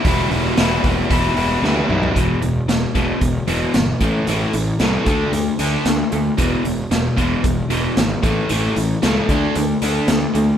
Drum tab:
HH |o-o-o-o-o-o-----|x-x-x-x-x-x-x-x-|x-x-x-x-x-x-x-x-|x-x-x-x-x-x-x-x-|
SD |----o-------o---|----o-------o---|----o-------o---|----o-------o---|
T1 |-------------o--|----------------|----------------|----------------|
T2 |--------------o-|----------------|----------------|----------------|
FT |---------------o|----------------|----------------|----------------|
BD |o-----o-o-------|o-----o-o-----o-|------o---------|o-----o-o-----o-|

HH |x-x-x-x-x-x-x-x-|
SD |----o-------o---|
T1 |----------------|
T2 |----------------|
FT |----------------|
BD |------o---------|